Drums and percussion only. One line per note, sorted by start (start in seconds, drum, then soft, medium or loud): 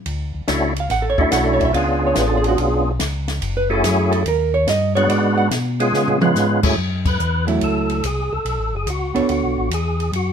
0.06 ride medium
0.48 snare medium
0.48 hi-hat pedal medium
0.48 ride medium
0.76 ride medium
0.90 snare soft
0.90 ride medium
1.18 kick medium
1.31 snare medium
1.31 hi-hat pedal medium
1.31 ride medium
1.60 kick medium
1.60 ride soft
1.74 ride medium
2.15 snare medium
2.15 hi-hat pedal medium
2.15 ride medium
2.44 ride medium
2.58 ride medium
2.99 snare medium
2.99 hi-hat pedal medium
2.99 ride medium
3.28 snare medium
3.28 ride medium
3.42 ride medium
3.84 snare medium
3.84 hi-hat pedal medium
3.84 ride medium
4.12 ride medium
4.26 ride medium
4.67 snare medium
4.67 hi-hat pedal medium
4.67 ride medium
4.96 ride medium
5.10 ride medium
5.51 snare medium
5.51 hi-hat pedal medium
5.51 ride medium
5.80 ride medium
5.94 snare medium
6.08 floor tom medium
6.21 mid tom loud
6.35 snare soft
6.35 hi-hat pedal medium
6.63 kick medium
6.63 crash medium
7.05 kick medium
7.05 crash medium
7.19 hi-hat pedal medium
7.48 ride soft
7.61 ride medium
7.89 ride soft
8.04 hi-hat pedal medium
8.04 ride medium
8.45 ride medium
8.87 hi-hat pedal soft
8.87 ride medium
9.16 ride soft
9.29 ride medium
9.71 hi-hat pedal soft
9.71 ride medium
10.00 ride soft
10.13 ride medium